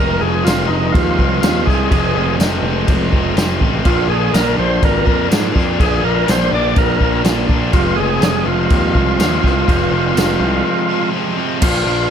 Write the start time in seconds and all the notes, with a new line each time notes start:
Already playing: F1 F2 C3 F3 G#3 A#4
0.00 C4 F4
0.21 F1 F3 G#3 C4 F4 G#4
0.45 F1 F2 C3 F3 G#3 C4 F4, snare, tambourine, crash
0.67 F1 G#3 C4 D#4
0.73 F3
0.92 D#2 F4, kick, crash
1.17 C2 F3 G#3 C4 F4, kick
1.41 D#2 F2 C3 F3 G#3 C4 F4, snare, tambourine, crash
1.66 C2 F3 G#3 C4 F4 G#4, kick, snare
1.90 F1 F2 C3 F3 G#3 C4 F4 G#4, kick, crash
2.15 F1 F3 G#3 C4 F4
2.39 F1 F2 C3 F3 G#3 C4 F4, snare, tambourine, crash
2.62 F1 G#3 C4
2.67 F3
2.88 F1, kick, crash
3.12 F1 F3 G#3 C4 F4, kick
3.36 F1 F2 C3 F3 G#3 C4 F4, snare, tambourine, crash
3.61 A1 F3 G#3 C4 F4, kick
3.84 A#1 A#2 D3 F3 A#3 D4 F4, kick, crash
4.08 A#1 F3 A#3 D4 F4 G#4
4.33 A#1 A#2 D3 F3 A#3 D4 F4 A#4, snare, tambourine, crash
4.57 A#1 F3 A#3 D4 C5
4.82 G#1 A#4, kick, crash
5.05 F2 A#3 D4 F4, kick
5.29 G#2 A#2 D3 F3 A#3 D4 F4, snare, tambourine, crash
5.54 F2 F3 A#3 D4 F4, kick, snare
5.79 A#1 A#2 D3 F3 A#3 D4 F4 G#4, kick, crash
6.03 A#1 F3 A#3 D4 F4 A#4
6.27 A#1 A#2 D3 F3 A#3 D4 F4 C5, snare, tambourine, crash
6.50 A#1 F3 A#3 D4 D5
6.76 A#1 A#4, kick, crash
6.99 A#1 A#3 D4 F4, kick
7.23 A#1 A#2 D3 F3 A#3 D4 F4, snare, tambourine, crash
7.49 A#1 F3 A#3 D4 F4, kick
7.73 F1 F2 C3 F3 G#3 C4 F4, kick, crash
7.96 F1 F3 G#3 C4 F4 G#4
8.21 F1 F2 C3 F3 G#3 C4 F4, snare, tambourine, crash
8.43 F1 F3 G#3 C4
8.48 F4
8.70 D#2, kick, crash
8.94 C2 F3 G#3 C4 F4, kick
9.18 D#2 F2 C3 F3 G#3 C4 F4, snare, tambourine, crash
9.42 C2 F3 G#3 C4 F4, kick
9.46 snare
9.66 F1 F2 C3 F3 G#3 C4 F4, kick, crash
9.92 F1 F3 G#3 C4 F4
10.16 F1 F2 C3 F3 G#3 C4 F4, snare, tambourine, crash
10.40 C2 F3 G#3 C4
10.89 F3 G#3 C4 F4
11.13 F2 C3 F3 G#3 C4 F4
11.38 F3 G#3 C4 F4
11.61 A#1 A#2 F3 A#3 D4 F4, kick, crash
11.85 A#1 A#3 D4 F4